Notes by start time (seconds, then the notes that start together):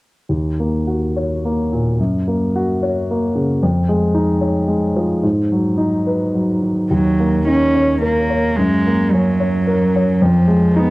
0.29 D#2
0.60 A#3
0.87 F#4
1.16 C#5
1.45 A#3
1.72 A#2
1.99 F#2
2.28 A#3
2.56 F#4
2.82 C#5
3.11 A#3
3.35 C#3
3.63 F2
3.89 G#3
4.14 D#4
4.41 C#5
4.68 G#3
4.96 F3
5.23 G#2
5.52 F#3
5.78 D#4
6.07 B4
6.35 F#3
6.62 D#3
6.91 D#2 F#3
7.20 A#3
7.47 C#4 D#4
7.75 C#5
8.02 A#3 A#4
8.30 C#5
8.56 F#2 G#3
8.87 A#3
9.12 F#3 C#4
9.40 C#5
9.67 A#4
9.96 C#5
10.22 F2 F3
10.48 G#3
10.76 B3 D#4